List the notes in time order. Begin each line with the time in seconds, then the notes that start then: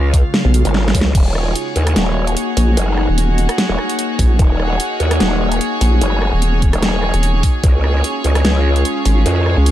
Already playing: C#2 C#3 G#3 F4 C#5 F5 G#5
0.14 kick, closed hi-hat
0.34 snare
0.45 B1
0.54 closed hi-hat
0.65 G#1, closed hi-hat
0.74 snare
0.88 snare
0.95 C#2, kick, open hi-hat
1.01 snare
1.15 D#1 A#3 D#4 F#4 G#4, kick, closed hi-hat, crash
1.27 C#5
1.35 cross-stick
1.56 closed hi-hat
1.63 F#5
1.76 D#2, closed hi-hat
1.87 cross-stick, closed hi-hat
1.96 D#1, snare, closed hi-hat
2.27 closed hi-hat
2.37 closed hi-hat
2.57 A#1, open hi-hat
2.77 F#1, closed hi-hat
2.97 cross-stick
3.08 D#1
3.18 closed hi-hat
3.38 closed hi-hat
3.49 cross-stick, closed hi-hat
3.58 snare, closed hi-hat
3.69 D#1
3.79 cross-stick
3.89 closed hi-hat
3.99 closed hi-hat
4.19 A#1, kick, open hi-hat
4.39 D#1, kick, closed hi-hat
4.60 cross-stick
4.80 closed hi-hat
5.00 D#2, closed hi-hat
5.11 cross-stick, closed hi-hat
5.20 D#1, snare, closed hi-hat
5.52 closed hi-hat
5.61 closed hi-hat
5.81 A#1, open hi-hat
6.01 F#1, closed hi-hat
6.22 cross-stick
6.33 D#1
6.42 closed hi-hat
6.62 kick, closed hi-hat
6.73 D#1, cross-stick, closed hi-hat
6.83 snare, closed hi-hat
7.03 cross-stick
7.14 D#1, closed hi-hat
7.23 closed hi-hat
7.43 kick, open hi-hat
7.64 C#2 G#3 C#4 F4, kick, closed hi-hat
7.84 cross-stick
8.04 closed hi-hat
8.10 F5
8.24 C#2, closed hi-hat
8.35 cross-stick, closed hi-hat
8.45 C#2, snare, closed hi-hat
8.76 closed hi-hat
8.85 closed hi-hat
9.05 G#1, open hi-hat
9.26 F2, closed hi-hat
9.46 cross-stick
9.57 C#2
9.66 closed hi-hat